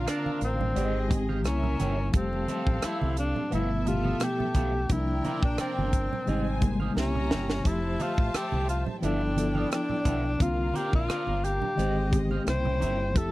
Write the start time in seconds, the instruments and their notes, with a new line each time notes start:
Already playing: reed electric piano D3 A#3 C4 F4, string section D4 A#4 F5, tenor saxophone F4
0.06 clean electric guitar C4 F4 A#4 D5, tenor saxophone D4, cross-stick, closed hi-hat
0.26 high conga
0.41 fingered electric bass A1, tenor saxophone C4, muted clean electric guitar stroke, closed hi-hat
0.59 muted clean electric guitar stroke, low conga
0.74 fingered electric bass G#1, reed electric piano D#3 G#3 C4 G4, string section C4 G#4 D#5, clean electric guitar D#4 G4 C5 D#5, closed hi-hat, muted conga, high conga
1.08 reed electric piano D#3 G#3 C4 G4, muted clean electric guitar stroke, kick, closed hi-hat, high conga
1.29 clean electric guitar D#4 G4 C5 F5, high conga
1.43 fingered electric bass C2, reed electric piano C3 C#3 A#3 E4, string section C#4 A#4 E5, tenor saxophone C#4, muted clean electric guitar stroke, cross-stick, closed hi-hat
1.63 muted clean electric guitar stroke, low conga
1.79 fingered electric bass G1, clean electric guitar C#4 G4 A#4 E5, cross-stick, closed hi-hat, high conga
1.98 muted clean electric guitar stroke
2.11 fingered electric bass F1, reed electric piano F3 G3 A3, string section C4 A4 F5, kick, closed hi-hat
2.15 tenor saxophone C4, reed electric piano G4
2.33 muted conga
2.48 clean electric guitar C4 G4 A4 E5, cross-stick, closed hi-hat, high conga
2.67 fingered electric bass A1, kick
2.82 clean electric guitar C4 G4 A4 E5, tenor saxophone E4, muted fingered electric bass stroke, cross-stick, closed hi-hat
3.02 fingered electric bass C2, muted conga, high conga
3.16 tenor saxophone D4, muted clean electric guitar stroke, closed hi-hat
3.36 muted clean electric guitar stroke, low conga
3.50 fingered electric bass G1, reed electric piano B2 F3 A3 E4, clean electric guitar B3 F4 A4 E5, string section B3 A4 E5, tenor saxophone E4, closed hi-hat, muted conga, high conga
3.85 reed electric piano A#2 F3 A3 G4, tenor saxophone F4, muted clean electric guitar stroke, closed hi-hat, high conga
3.91 reed electric piano B2
4.03 clean electric guitar B3 F4 A4 F5, high conga
4.20 muted clean electric guitar stroke, cross-stick, closed hi-hat, muted conga
4.24 tenor saxophone G4
4.39 muted clean electric guitar stroke, low conga
4.54 fingered electric bass B1, clean electric guitar B3 F4 A4 E5, kick, closed hi-hat, high conga
4.74 muted clean electric guitar stroke
4.89 fingered electric bass C2, reed electric piano C3 F3 A#3 D4, string section D4 A#4 G5, tenor saxophone E4, kick, closed hi-hat
5.24 clean electric guitar C4 F4 A#4 D5, closed hi-hat, high conga
5.43 fingered electric bass A#1, tenor saxophone D4, kick
5.57 clean electric guitar C4 F4 A#4 D5, tenor saxophone C4, muted fingered electric bass stroke, cross-stick, closed hi-hat, muted conga
5.78 fingered electric bass G1, muted conga, high conga
5.93 muted clean electric guitar stroke, kick, closed hi-hat
6.12 muted clean electric guitar stroke, low conga
6.25 fingered electric bass G#1, reed electric piano C3 G3 G#3 D#4, clean electric guitar D#4 G4 C5 D#5, string section D#4 C5 G#5, closed hi-hat, high conga
6.47 muted conga
6.60 reed electric piano C3 G3 G#3 A#3, muted clean electric guitar stroke, kick, closed hi-hat, high conga
6.80 clean electric guitar D#4 G4 C5 F5, high conga
6.95 fingered electric bass C2, reed electric piano C3 C#3 A#3 E4, string section G4 E5 A#5, muted clean electric guitar stroke, snare, muted conga
6.99 tenor saxophone C#4
7.15 muted clean electric guitar stroke, low conga
7.30 fingered electric bass G1, clean electric guitar C#4 G4 A#4 E5, snare, high conga
7.49 muted clean electric guitar stroke, snare
7.63 fingered electric bass F1, reed electric piano F3 A3 G4 E5, string section C5 E5 A5, kick, closed hi-hat
7.67 tenor saxophone E4
7.99 clean electric guitar C4 G4 A4 E5, tenor saxophone F4, cross-stick, closed hi-hat, high conga
8.18 fingered electric bass A1, kick
8.34 clean electric guitar C4 G4 A4 E5, tenor saxophone G4, muted fingered electric bass stroke, cross-stick, closed hi-hat, muted conga
8.52 fingered electric bass C2, muted conga, high conga
8.68 tenor saxophone F4, muted clean electric guitar stroke, closed hi-hat
8.87 muted clean electric guitar stroke, low conga
9.01 fingered electric bass G1, reed electric piano F3 B3 E4, clean electric guitar B3 F4 A4 E5, tenor saxophone D4, string section E4 D5 G5, closed hi-hat, high conga
9.05 reed electric piano A4
9.21 muted conga
9.36 reed electric piano F3 B3 E4 A4, muted clean electric guitar stroke, closed hi-hat, high conga
9.55 clean electric guitar B3 F4 A4 F5, high conga
9.71 tenor saxophone D4, muted clean electric guitar stroke, cross-stick, closed hi-hat, muted conga
9.90 muted clean electric guitar stroke, low conga
10.05 fingered electric bass B1, clean electric guitar B3 F4 A4 E5, kick, closed hi-hat, high conga
10.24 muted clean electric guitar stroke
10.38 fingered electric bass C2, reed electric piano D3 A#3 C4, string section D4 A#4 F5, kick, closed hi-hat, muted conga
10.42 reed electric piano F4, tenor saxophone F4
10.74 clean electric guitar C4 F4 A#4 D5, tenor saxophone G4, closed hi-hat, high conga
10.93 fingered electric bass A#1, tenor saxophone F4, kick
11.08 clean electric guitar C4 F4 A#4 D5, muted fingered electric bass stroke, cross-stick, closed hi-hat
11.27 fingered electric bass G1, high conga
11.43 tenor saxophone G4, muted clean electric guitar stroke, closed hi-hat
11.62 muted clean electric guitar stroke, low conga
11.76 fingered electric bass G#1, reed electric piano D#3 G#3 C4 G4, string section G#3 C4 D#5, clean electric guitar D#4 G4 C5 D#5, closed hi-hat, muted conga, high conga
12.10 reed electric piano D#3 G#3 C4 G4, muted clean electric guitar stroke, kick, closed hi-hat, high conga
12.31 clean electric guitar D#4 G4 C5 F5, high conga
12.44 fingered electric bass C2, reed electric piano C#3 A#3 C4 E4, string section C#4 E4 G5, muted clean electric guitar stroke, cross-stick, closed hi-hat, muted conga
12.49 tenor saxophone C5
12.65 muted clean electric guitar stroke, muted conga, low conga
12.80 fingered electric bass G1, clean electric guitar C#4 G4 A#4 E5, closed hi-hat, high conga
12.99 muted clean electric guitar stroke
13.13 fingered electric bass F1, reed electric piano F3 A3 E4, string section C4 E5, kick, closed hi-hat, muted conga
13.17 reed electric piano G4, string section A4, tenor saxophone A4